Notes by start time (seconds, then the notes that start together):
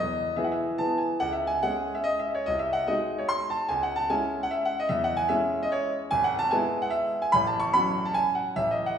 Already playing: E2 D#5
0.36 E3 B3 G#4 E5
0.44 F#5
0.52 E5
0.78 E3 B3 G#4 A5
0.98 G#5
1.20 C#2 F#5
1.32 E5
1.47 G#5
1.63 G#3 C#4 G#4 F#5
1.95 E5
2.04 D#5
2.19 E5
2.35 C#5
2.46 C2 D#5
2.59 E5
2.73 F#5
2.87 G#3 D#4 F#4 D#5
3.18 C#5
3.29 C6
3.50 A5
3.69 C#2 G#5
3.83 F#5
3.96 A5
4.10 G#3 C#4 E4 G#5
4.43 F#5
4.51 E5
4.65 F#5
4.80 D#5
4.89 E2 E5
5.04 F#5
5.17 G#5
5.29 G#3 C#4 E4 E5
5.63 D#5
5.72 C#5
6.11 G#1 G#5
6.24 F#5
6.39 A5
6.51 G#3 B3 E4 G#5
6.82 F#5
6.90 E5
7.22 G#5
7.32 A1 B5
7.47 A5
7.60 C#6
7.73 F#3 C#4 F#4 B5
8.05 A5
8.14 G#5
8.35 F#5
8.56 A1 E5
8.71 D#5
8.86 F#5